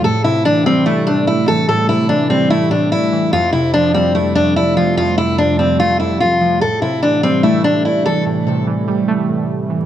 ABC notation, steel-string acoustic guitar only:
X:1
M:4/4
L:1/8
Q:1/4=146
K:Am
V:1 name="Steel-string acoustic guitar"
A E D C E D E A | A E D C E D E2 | F E D C E D E F | F E D C F E F2 |
A E D C E D E A | z8 |]